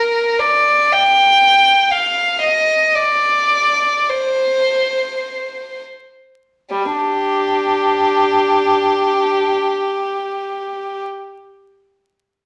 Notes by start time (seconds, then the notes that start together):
Already playing: A#4
0.39 D5
0.92 G5
1.91 F5
2.43 D#5
2.96 D5
4.10 C5
6.71 G3
6.95 D4 G4